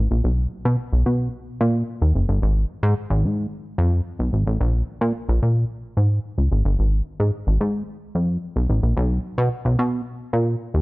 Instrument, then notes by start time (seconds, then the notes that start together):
analog synth bass
0.11 A#1
0.24 B1
0.65 B2
0.93 B1
1.06 B2
1.61 A#2
2.02 D#2
2.15 F#1
2.29 G1
2.42 G#1
2.83 G#2
3.10 G#1
3.24 G#2
3.78 F2
4.19 B1
4.33 G#1
4.47 A1
4.60 A#1
5.01 A#2
5.29 A#1
5.42 A#2
5.97 G#2
6.38 C#2
6.52 G#1
6.65 G1
6.79 G#1
7.20 G#2
7.47 G#1
7.61 G#2
8.15 F2
8.56 B1
8.69 A1
8.83 A#1
8.97 B1
9.38 B2
9.65 B1
9.79 B2
10.33 A#2
10.74 D#2